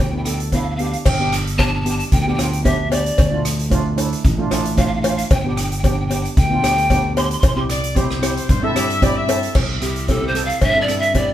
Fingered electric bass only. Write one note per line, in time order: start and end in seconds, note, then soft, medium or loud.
0.00 0.94 D2 loud
1.06 2.01 G1 loud
2.12 2.36 D2 loud
2.38 3.10 D2 medium
3.19 4.14 D2 loud
4.25 4.49 A1 loud
4.51 5.23 A1 medium
5.31 6.26 G1 loud
6.37 6.61 D2 loud
6.63 7.35 D2 medium
7.43 8.38 C2 loud
8.49 8.73 G2 loud
8.75 9.47 G2 medium
9.55 10.51 C2 loud
10.62 11.34 G2 loud